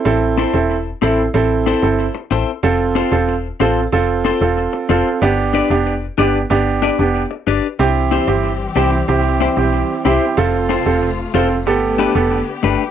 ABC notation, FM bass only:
X:1
M:4/4
L:1/16
Q:1/4=93
K:C
V:1 name="FM bass" clef=bass
A,,,3 E,,,3 A,,,2 A,,,3 G,,,2 z A,,, z | F,,,3 E,,,3 A,,,2 F,,,3 E,,,2 z F,,, z | G,,,3 F,,,3 G,,,2 G,,,3 F,,,2 z G,,, z | C,,3 G,,,3 C,,2 C,,3 B,,,2 z C,, z |
F,,,3 E,,,3 F,,,2 G,,,3 F,,,2 z G,,, z |]